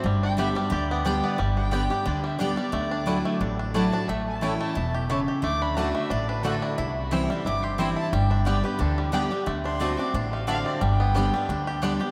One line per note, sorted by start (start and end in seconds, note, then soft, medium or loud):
0.00 0.69 G2 medium
0.00 0.23 D4 medium
0.04 0.52 G1 medium
0.04 0.54 G3 medium
0.23 0.69 D4 medium
0.23 0.38 G5 loud
0.37 0.55 D3 medium
0.37 0.56 G3 medium
0.37 0.48 B3 medium
0.37 0.56 B3 medium
0.37 0.48 G4 medium
0.37 0.71 G4 medium
0.37 0.54 G4 medium
0.37 0.48 D5 medium
0.37 0.58 E5 loud
0.37 0.49 G5 loud
0.55 1.03 G3 medium
0.55 0.72 B3 medium
0.55 0.71 G4 medium
0.55 0.72 D5 medium
0.70 1.20 D2 loud
0.70 1.03 D3 loud
0.70 1.20 G4 medium
0.70 0.90 D5 loud
0.90 1.22 B3 medium
0.90 1.05 D5 medium
1.05 1.37 D3 medium
1.05 1.38 G3 medium
1.05 1.15 B3 medium
1.05 1.38 B3 loud
1.05 1.40 D4 medium
1.05 1.15 G4 medium
1.05 1.39 G4 loud
1.05 1.16 D5 loud
1.05 1.25 G5 medium
1.05 1.16 G5 loud
1.23 1.40 B3 medium
1.23 1.39 D5 loud
1.38 1.87 G1 loud
1.38 2.03 G2 medium
1.38 1.71 G3 medium
1.56 2.05 D4 medium
1.56 2.08 G5 loud
1.71 1.90 D3 medium
1.71 1.90 G3 medium
1.71 2.21 G3 medium
1.71 1.82 B3 medium
1.71 1.90 B3 medium
1.71 1.82 G4 medium
1.71 1.89 G4 loud
1.71 1.83 D5 medium
1.71 1.83 G5 loud
1.90 2.07 B3 soft
1.90 2.06 G4 medium
1.90 2.37 G4 medium
2.06 2.55 D2 medium
2.06 2.37 D3 loud
2.06 2.38 D4 medium
2.06 2.24 D5 loud
2.24 2.56 G3 medium
2.24 2.40 E5 medium
2.39 2.57 D3 medium
2.39 2.58 G3 medium
2.39 2.50 B3 medium
2.39 2.57 B3 loud
2.39 2.74 D4 medium
2.39 2.50 G4 loud
2.39 2.55 G4 loud
2.39 3.39 D5 loud
2.39 2.50 D5 medium
2.39 2.50 G5 loud
2.56 2.73 G3 medium
2.56 2.73 B3 medium
2.56 2.72 G4 medium
2.72 3.21 D2 medium
2.72 3.37 D3 medium
2.72 3.25 A3 medium
2.91 3.06 D4 medium
3.06 3.39 F#3 medium
3.06 3.39 A3 medium
3.06 3.17 A3 medium
3.06 3.40 D4 medium
3.06 3.17 E4 medium
3.06 3.40 E4 medium
3.06 3.40 F#4 medium
3.06 3.17 D5 loud
3.06 3.17 F#5 loud
3.25 4.09 A3 medium
3.40 3.89 A1 medium
3.40 4.05 A2 medium
3.40 3.58 D4 medium
3.59 3.74 D4 medium
3.74 3.92 F#3 medium
3.74 3.84 A3 medium
3.74 3.92 A3 medium
3.74 3.92 D4 medium
3.74 3.85 E4 medium
3.74 3.93 E4 medium
3.74 3.91 F#4 medium
3.74 3.85 D5 loud
3.74 3.85 F#5 loud
3.74 4.10 A5 loud
3.92 4.09 D4 medium
3.92 4.09 E4 medium
3.92 4.08 F#4 medium
4.08 4.56 A1 medium
4.08 4.73 A2 medium
4.08 4.60 A3 medium
4.08 4.26 E5 loud
4.27 4.45 A5 medium
4.41 4.74 E3 medium
4.41 4.52 A3 medium
4.41 4.75 A3 medium
4.41 4.75 C#4 medium
4.41 4.76 E4 medium
4.41 4.52 E4 medium
4.41 4.75 E4 medium
4.41 4.52 C#5 medium
4.41 4.60 G5 medium
4.41 4.53 A5 loud
4.60 5.07 A3 medium
4.60 4.93 A5 loud
4.75 5.24 E1 loud
4.75 5.08 B2 medium
4.75 5.09 E4 medium
4.94 5.27 G4 medium
5.10 5.42 C#3 medium
5.10 5.19 A3 medium
5.10 5.44 E4 medium
5.10 5.20 E4 loud
5.10 5.20 C#5 loud
5.10 5.20 A5 loud
5.28 5.44 G4 medium
5.42 5.91 D2 loud
5.42 5.75 D3 medium
5.42 5.92 A3 medium
5.42 5.63 D6 loud
5.62 5.76 D4 medium
5.62 5.79 B5 loud
5.77 6.09 D3 medium
5.77 5.87 A3 medium
5.77 6.09 A3 medium
5.77 6.09 D4 medium
5.77 6.10 D4 medium
5.77 5.87 F#4 medium
5.77 6.10 F#4 medium
5.77 5.87 D5 medium
5.77 5.88 F#5 loud
5.77 5.95 A5 medium
5.95 6.41 A3 medium
5.95 6.12 E5 medium
6.10 6.58 A1 medium
6.10 6.75 A2 medium
6.10 6.28 D4 medium
6.10 6.30 D5 loud
6.28 6.43 D4 medium
6.28 6.45 B4 loud
6.43 6.76 D3 medium
6.43 6.76 A3 medium
6.43 6.54 A3 loud
6.43 6.61 D4 medium
6.43 6.77 D4 loud
6.43 6.54 F#4 loud
6.43 6.77 F#4 medium
6.43 6.64 A4 loud
6.43 6.55 D5 loud
6.43 6.54 F#5 loud
6.62 6.78 D4 medium
6.62 6.79 E4 medium
6.78 7.26 C2 loud
6.78 7.42 C3 medium
6.78 6.97 D4 medium
6.78 7.26 E4 medium
6.95 7.28 E4 loud
7.11 7.29 E3 medium
7.11 7.60 E3 medium
7.11 7.29 G3 medium
7.11 7.21 C4 medium
7.11 7.29 C4 medium
7.11 7.22 E4 medium
7.11 7.29 E4 medium
7.11 7.22 C5 loud
7.11 7.22 G5 loud
7.30 7.76 G3 medium
7.30 7.46 C4 soft
7.30 7.45 E4 medium
7.45 7.93 G1 medium
7.45 8.10 G2 medium
7.45 7.94 E4 medium
7.45 7.64 D6 loud
7.63 8.10 G4 medium
7.63 7.78 C6 loud
7.78 8.11 E3 medium
7.78 8.11 G3 medium
7.78 7.88 C4 medium
7.78 8.13 C4 medium
7.78 8.12 C4 medium
7.78 7.89 E4 loud
7.78 8.12 E4 loud
7.78 7.89 C5 loud
7.78 7.89 G5 loud
7.78 7.97 B5 medium
7.96 8.12 E4 medium
7.96 8.12 A5 loud
8.12 8.60 G1 loud
8.12 8.77 G2 medium
8.12 8.46 G3 medium
8.12 8.32 G5 loud
8.30 8.80 D4 medium
8.30 8.45 E5 medium
8.45 8.63 D3 medium
8.45 8.64 G3 medium
8.45 8.95 G3 medium
8.45 8.56 B3 medium
8.45 8.64 B3 medium
8.45 8.56 G4 loud
8.45 8.62 G4 medium
8.45 8.65 D5 medium
8.45 8.56 D5 medium
8.45 8.56 G5 loud
8.63 8.80 B3 soft
8.63 8.79 G4 medium
8.63 9.11 G4 medium
8.63 8.81 B4 medium
8.79 9.28 D2 loud
8.79 9.11 D3 loud
8.79 9.13 D4 medium
8.79 8.99 A4 loud
8.97 9.31 G3 medium
8.97 9.12 G4 loud
9.12 9.30 D3 medium
9.12 9.30 G3 medium
9.12 9.23 B3 loud
9.12 9.31 B3 medium
9.12 9.65 D4 medium
9.12 9.46 G4 loud
9.12 9.23 G4 loud
9.12 9.29 G4 loud
9.12 9.23 D5 loud
9.12 9.23 G5 loud
9.30 9.46 G3 medium
9.30 9.47 B3 medium
9.30 9.46 G4 medium
9.46 9.95 D2 medium
9.46 9.78 D3 medium
9.46 9.80 A3 medium
9.64 9.99 D4 medium
9.64 10.00 C6 loud
9.80 9.97 D3 medium
9.80 9.98 A3 medium
9.80 10.29 A3 medium
9.80 9.90 C4 medium
9.80 9.98 C4 medium
9.80 9.90 F#4 medium
9.80 9.96 F#4 loud
9.80 9.90 D5 loud
9.80 9.91 A5 loud
9.97 10.14 C4 soft
9.97 10.15 D4 medium
9.97 10.13 F#4 medium
9.97 10.16 D6 medium
10.14 10.62 A1 medium
10.14 10.78 A2 medium
10.14 10.48 D4 medium
10.14 10.32 C6 loud
10.33 10.79 A3 medium
10.33 10.47 F5 loud
10.47 10.79 D3 medium
10.47 10.80 A3 medium
10.47 10.57 C4 loud
10.47 10.80 C4 loud
10.47 11.15 D4 medium
10.47 10.57 F#4 loud
10.47 10.81 F#4 medium
10.47 10.58 D5 loud
10.47 10.65 F5 loud
10.47 10.58 A5 loud
10.66 10.81 C4 medium
10.66 10.83 D5 loud
10.81 11.29 G1 loud
10.81 11.45 G2 loud
10.81 11.29 G3 medium
10.81 11.79 G5 loud
11.00 11.46 B3 medium
11.15 11.32 D3 medium
11.15 11.33 G3 loud
11.15 11.24 B3 medium
11.15 11.33 B3 medium
11.15 11.48 D4 medium
11.15 11.24 G4 medium
11.15 11.32 G4 medium
11.15 11.25 D5 medium
11.15 11.25 G5 medium
11.33 11.79 G3 medium
11.33 11.49 B3 soft
11.33 11.48 G4 medium
11.49 11.96 D2 loud
11.49 11.81 D3 medium
11.49 11.82 D4 medium
11.67 11.99 G4 medium
11.82 11.99 D3 medium
11.82 12.00 G3 medium
11.82 11.92 B3 loud
11.82 12.00 B3 medium
11.82 12.11 D4 medium
11.82 11.92 G4 loud
11.82 11.98 G4 loud
11.82 11.92 D5 loud
11.82 11.92 G5 loud
11.99 12.11 B3 soft
11.99 12.11 G4 medium